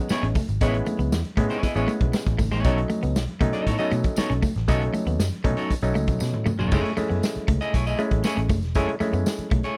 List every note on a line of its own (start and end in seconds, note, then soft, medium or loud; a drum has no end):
0.00 0.42 G#3 medium
0.00 0.42 B3 medium
0.00 0.42 C#4 medium
0.00 0.42 D#4 medium
0.09 0.25 B3 medium
0.09 0.25 E4 medium
0.09 0.25 G#4 medium
0.09 0.25 C#5 loud
0.09 muted picked electric bass stroke soft
0.09 muted clean electric guitar stroke soft
0.09 snare loud
0.09 tambourine loud
0.09 muted conga soft
0.23 0.32 A1 medium
0.23 0.33 C#4 medium
0.23 closed hi-hat medium
0.35 0.46 A3 medium
0.35 kick medium
0.35 open hi-hat medium
0.35 tambourine medium
0.35 muted conga soft
0.35 high conga medium
0.35 low conga medium
0.48 0.58 G#1 medium
0.48 closed hi-hat medium
0.48 tambourine soft
0.61 0.80 A1 loud
0.61 1.21 G#3 medium
0.61 0.76 B3 medium
0.61 1.21 B3 medium
0.61 1.21 C#4 medium
0.61 0.67 D#4 medium
0.61 0.76 E4 medium
0.61 0.76 G#4 medium
0.61 0.76 C#5 medium
0.61 kick loud
0.61 closed hi-hat medium
0.61 tambourine medium
0.61 muted conga soft
0.61 low conga medium
0.67 1.24 E4 medium
0.74 muted clean electric guitar stroke soft
0.74 closed hi-hat soft
0.86 0.97 A3 medium
0.86 closed hi-hat medium
0.86 tambourine soft
0.86 muted conga soft
0.86 high conga medium
0.99 1.08 C#2 medium
0.99 1.10 B3 medium
0.99 closed hi-hat medium
0.99 tambourine soft
0.99 high conga medium
1.12 1.21 E2 medium
1.12 snare loud
1.12 tambourine loud
1.24 closed hi-hat medium
1.24 high conga medium
1.37 1.47 A2 medium
1.37 1.67 G#3 medium
1.37 1.48 A3 medium
1.37 1.67 B3 medium
1.37 1.67 C#4 medium
1.37 1.67 E4 loud
1.37 kick loud
1.37 closed hi-hat medium
1.37 muted conga soft
1.37 low conga medium
1.49 1.62 B3 medium
1.49 1.62 E4 medium
1.49 1.62 G#4 medium
1.49 1.63 C#5 medium
1.49 closed hi-hat medium
1.49 tambourine soft
1.63 1.74 B3 medium
1.63 1.74 E4 medium
1.63 1.74 G#4 medium
1.63 1.75 D#5 medium
1.63 muted picked electric bass stroke soft
1.63 kick medium
1.63 closed hi-hat medium
1.63 tambourine medium
1.74 1.85 A1 medium
1.74 2.45 G#3 medium
1.74 2.45 B3 medium
1.74 1.91 B3 medium
1.74 2.45 C#4 medium
1.74 2.45 E4 medium
1.74 1.91 E4 medium
1.74 1.90 G#4 medium
1.74 1.90 C#5 medium
1.74 closed hi-hat soft
1.74 tambourine soft
1.88 1.99 A3 medium
1.88 closed hi-hat medium
1.88 tambourine soft
1.88 muted conga soft
2.00 2.10 B1 medium
2.00 kick medium
2.00 closed hi-hat medium
2.00 high conga medium
2.13 muted clean electric guitar stroke soft
2.13 snare loud
2.13 tambourine medium
2.13 muted conga soft
2.27 2.36 A1 medium
2.27 kick medium
2.27 closed hi-hat medium
2.38 2.48 G#1 medium
2.38 2.49 A3 medium
2.38 kick medium
2.38 open hi-hat medium
2.38 tambourine medium
2.38 muted conga soft
2.38 high conga medium
2.38 low conga medium
2.51 2.62 A1 medium
2.51 2.62 G#3 medium
2.51 2.64 B3 medium
2.51 2.65 E4 medium
2.51 2.65 G#4 medium
2.51 2.65 C#5 medium
2.51 snare soft
2.51 closed hi-hat medium
2.51 tambourine soft
2.64 2.83 B1 loud
2.64 3.24 F#3 medium
2.64 3.24 A3 medium
2.64 2.79 B3 medium
2.64 3.24 C#4 medium
2.64 3.24 D#4 medium
2.64 2.79 D#4 loud
2.64 2.80 A4 medium
2.64 2.80 C#5 loud
2.64 kick loud
2.64 closed hi-hat medium
2.64 tambourine medium
2.64 muted conga soft
2.64 low conga medium
2.77 muted clean electric guitar stroke soft
2.77 closed hi-hat soft
2.90 3.00 A3 medium
2.90 closed hi-hat medium
2.90 tambourine medium
2.90 muted conga soft
2.90 high conga medium
3.03 3.16 C#2 medium
3.03 3.13 B3 medium
3.03 closed hi-hat medium
3.03 tambourine soft
3.03 high conga medium
3.16 3.25 B1 medium
3.16 snare loud
3.16 tambourine medium
3.16 muted conga soft
3.27 closed hi-hat medium
3.27 high conga medium
3.41 3.50 B2 medium
3.41 3.71 F#3 medium
3.41 3.51 A3 medium
3.41 3.71 A3 medium
3.41 3.71 C#4 medium
3.41 3.71 D#4 loud
3.41 kick loud
3.41 closed hi-hat medium
3.41 low conga medium
3.53 3.65 B3 medium
3.53 3.65 D#4 medium
3.53 3.66 A4 medium
3.53 3.67 D#5 medium
3.53 closed hi-hat medium
3.53 tambourine soft
3.66 3.76 A2 medium
3.66 3.78 B3 medium
3.66 3.78 D#4 medium
3.66 3.78 A4 medium
3.66 3.78 C#5 medium
3.66 kick medium
3.66 closed hi-hat medium
3.66 tambourine medium
3.66 muted conga soft
3.78 4.49 F#3 medium
3.78 4.49 A3 medium
3.78 3.94 B3 medium
3.78 4.49 C#4 medium
3.78 4.49 D#4 medium
3.78 3.94 D#4 medium
3.78 3.94 A4 medium
3.78 3.93 D#5 medium
3.78 closed hi-hat medium
3.78 tambourine soft
3.91 4.01 B2 loud
3.91 4.02 A3 medium
3.91 closed hi-hat medium
3.91 tambourine soft
3.91 muted conga soft
4.04 kick medium
4.04 closed hi-hat medium
4.04 tambourine soft
4.04 high conga medium
4.16 4.32 B3 medium
4.16 4.32 D#4 medium
4.16 4.32 A4 medium
4.16 4.32 C#5 loud
4.16 muted clean electric guitar stroke soft
4.16 muted picked electric bass stroke soft
4.16 snare loud
4.16 tambourine loud
4.16 muted conga soft
4.30 4.40 B1 medium
4.30 4.40 C#4 medium
4.30 closed hi-hat medium
4.42 4.53 A3 medium
4.42 kick medium
4.42 open hi-hat medium
4.42 tambourine medium
4.42 muted conga soft
4.42 high conga medium
4.42 low conga medium
4.55 4.69 A1 medium
4.55 snare soft
4.55 closed hi-hat medium
4.68 4.87 B1 medium
4.68 5.28 F#3 medium
4.68 5.28 A3 medium
4.68 4.83 B3 medium
4.68 5.28 C#4 medium
4.68 5.28 D#4 medium
4.68 4.83 D#4 medium
4.68 4.83 A4 medium
4.68 4.83 C#5 medium
4.68 kick loud
4.68 closed hi-hat loud
4.68 tambourine medium
4.68 low conga medium
4.81 muted clean electric guitar stroke soft
4.81 closed hi-hat medium
4.94 5.04 A3 medium
4.94 closed hi-hat medium
4.94 tambourine medium
4.94 high conga medium
5.06 5.16 D#2 medium
5.06 5.17 B3 medium
5.06 closed hi-hat soft
5.06 tambourine soft
5.06 high conga medium
5.19 5.29 F#2 medium
5.19 snare loud
5.19 tambourine loud
5.31 closed hi-hat medium
5.31 high conga medium
5.44 5.54 B2 medium
5.44 5.74 F#3 medium
5.44 5.55 A3 medium
5.44 5.74 A3 medium
5.44 5.74 C#4 medium
5.44 5.74 D#4 medium
5.44 kick loud
5.44 closed hi-hat medium
5.44 low conga medium
5.57 5.72 B3 medium
5.57 5.72 D#4 medium
5.57 5.72 A4 medium
5.57 5.72 C#5 medium
5.57 closed hi-hat medium
5.57 tambourine soft
5.70 kick medium
5.70 closed hi-hat medium
5.70 tambourine medium
5.70 muted conga soft
5.82 5.92 B1 medium
5.82 6.52 F#3 medium
5.82 6.52 A3 medium
5.82 6.52 C#4 medium
5.82 6.52 D#4 medium
5.82 closed hi-hat medium
5.82 tambourine soft
5.95 6.08 C#2 medium
5.95 6.06 A3 medium
5.95 closed hi-hat medium
5.95 tambourine medium
5.95 muted conga soft
6.07 6.17 B1 medium
6.07 kick medium
6.07 closed hi-hat medium
6.07 tambourine soft
6.07 high conga medium
6.20 6.35 B2 loud
6.20 muted clean electric guitar stroke soft
6.20 snare medium
6.20 tambourine loud
6.34 6.44 A2 medium
6.34 high tom medium
6.46 6.57 A3 medium
6.46 mid tom loud
6.46 tambourine medium
6.46 muted conga soft
6.46 high conga medium
6.46 low conga medium
6.59 6.69 E1 loud
6.59 6.69 F#3 medium
6.59 6.71 B3 medium
6.59 6.72 D#4 medium
6.59 6.72 A4 medium
6.59 6.72 C#5 medium
6.59 floor tom loud
6.59 tambourine soft
6.71 6.81 F#1 medium
6.71 6.92 G#3 medium
6.71 6.92 A3 medium
6.71 6.92 C#4 medium
6.71 6.92 E4 medium
6.71 6.92 G#4 medium
6.71 6.93 C#5 medium
6.71 kick loud
6.71 crash loud
6.71 tambourine medium
6.71 low conga medium
6.84 muted clean electric guitar stroke soft
6.84 closed hi-hat medium
6.97 7.77 G#3 medium
6.97 7.08 A3 medium
6.97 7.77 A3 medium
6.97 7.77 C#4 medium
6.97 7.77 E4 medium
6.97 muted picked electric bass stroke soft
6.97 closed hi-hat medium
6.97 tambourine medium
6.97 muted conga soft
6.97 high conga medium
7.10 7.20 F#2 medium
7.10 7.20 B3 medium
7.10 closed hi-hat medium
7.10 high conga medium
7.23 snare loud
7.23 tambourine loud
7.23 muted conga soft
7.35 muted picked electric bass stroke soft
7.35 closed hi-hat medium
7.35 high conga medium
7.48 7.57 C#2 medium
7.48 7.59 A3 medium
7.48 kick loud
7.48 closed hi-hat loud
7.48 muted conga soft
7.48 low conga medium
7.60 7.73 A3 medium
7.60 7.73 E4 medium
7.60 7.74 G#4 medium
7.60 7.75 D#5 medium
7.60 closed hi-hat medium
7.60 tambourine soft
7.73 7.93 B1 medium
7.73 7.85 A3 medium
7.73 7.85 E4 medium
7.73 7.86 G#4 medium
7.73 7.86 C#5 medium
7.73 kick medium
7.73 closed hi-hat medium
7.73 tambourine medium
7.73 muted conga soft
7.85 8.02 A3 medium
7.85 8.01 E4 medium
7.85 8.01 G#4 medium
7.85 8.01 D#5 medium
7.85 closed hi-hat medium
7.85 tambourine soft
7.98 8.59 G#3 medium
7.98 8.09 A3 medium
7.98 8.58 A3 medium
7.98 8.59 C#4 medium
7.98 8.59 E4 medium
7.98 closed hi-hat medium
7.98 tambourine soft
7.98 muted conga soft
8.11 8.21 A1 medium
8.11 kick medium
8.11 closed hi-hat medium
8.11 high conga medium
8.24 8.39 A3 medium
8.24 8.39 E4 loud
8.24 8.39 G#4 loud
8.24 8.39 C#5 loud
8.24 muted clean electric guitar stroke soft
8.24 snare loud
8.24 tambourine loud
8.24 muted conga soft
8.37 8.47 A1 medium
8.37 8.48 C#4 medium
8.37 closed hi-hat medium
8.49 8.62 F#1 loud
8.49 8.60 A3 medium
8.49 kick loud
8.49 open hi-hat medium
8.49 tambourine medium
8.49 high conga medium
8.49 low conga medium
8.62 8.76 E1 medium
8.62 snare soft
8.62 closed hi-hat medium
8.62 tambourine soft
8.75 8.85 F#1 loud
8.75 8.95 G#3 medium
8.75 8.90 A3 medium
8.75 8.95 A3 medium
8.75 8.95 C#4 medium
8.75 8.90 E4 medium
8.75 8.95 E4 medium
8.75 8.90 G#4 loud
8.75 8.90 C#5 medium
8.75 kick loud
8.75 closed hi-hat medium
8.75 tambourine medium
8.75 muted conga soft
8.75 low conga medium
8.88 muted clean electric guitar stroke soft
8.88 closed hi-hat soft
9.00 9.77 G#3 medium
9.00 9.11 A3 medium
9.00 9.77 A3 medium
9.00 9.77 C#4 medium
9.00 9.77 E4 medium
9.00 muted picked electric bass stroke soft
9.00 closed hi-hat medium
9.00 tambourine medium
9.00 muted conga soft
9.00 high conga medium
9.13 9.23 F#2 medium
9.13 9.24 B3 medium
9.13 closed hi-hat soft
9.13 tambourine soft
9.13 high conga medium
9.26 snare loud
9.26 tambourine loud
9.26 muted conga soft
9.38 muted picked electric bass stroke soft
9.38 closed hi-hat medium
9.38 high conga medium
9.51 9.61 B1 medium
9.51 9.62 A3 medium
9.51 kick loud
9.51 closed hi-hat medium
9.51 muted conga soft
9.51 low conga medium
9.63 9.76 A3 medium
9.63 9.76 E4 medium
9.63 9.77 G#4 medium
9.63 9.77 C#5 medium
9.63 closed hi-hat medium
9.63 tambourine soft